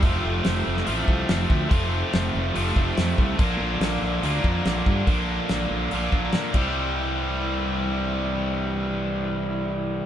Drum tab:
CC |----------------|----------------|----------------|--------------x-|
HH |o---o---o---o---|o---o---o---o---|o---o---o---o---|o---o---o---o---|
SD |----o--o----o---|----o-------o---|----o-------o---|----o-------o---|
BD |o---------o---o-|o---------o---o-|o---------o---o-|o---------o---o-|

CC |----------------|----------------|
HH |----------------|----------------|
SD |----------------|----------------|
BD |----------------|----------------|